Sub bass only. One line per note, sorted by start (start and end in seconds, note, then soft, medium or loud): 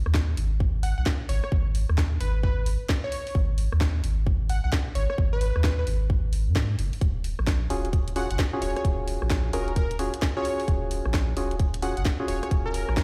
0.06 0.35 D#2 loud
0.37 0.94 G#1 medium
0.98 1.05 B1 loud
1.29 1.41 G#1 loud
1.52 1.85 G#1 loud
1.89 2.18 D#2 loud
2.21 2.77 G#1 medium
3.35 3.68 G#1 loud
3.73 4.01 D#2 loud
4.04 4.60 G#1 medium
4.64 4.71 B1 loud
4.95 5.07 G#1 loud
5.18 5.52 G#1 loud
5.56 5.85 D#2 loud
5.87 6.49 G#1 medium
6.47 6.76 G#2 loud
6.79 6.91 F#1 loud
7.01 7.35 D#1 loud
7.39 7.68 A#1 loud
7.70 8.26 D#1 medium
8.31 8.37 F#1 loud
8.62 8.74 D#1 loud
8.85 9.18 D#1 loud
9.22 9.51 A#1 loud
9.53 10.10 D#1 medium
10.68 11.01 D#1 loud
11.05 11.34 A#1 loud
11.37 11.93 D#1 medium
11.97 12.04 F#1 loud
12.28 12.40 D#1 loud
12.51 12.85 D#1 loud
12.89 13.04 A#1 loud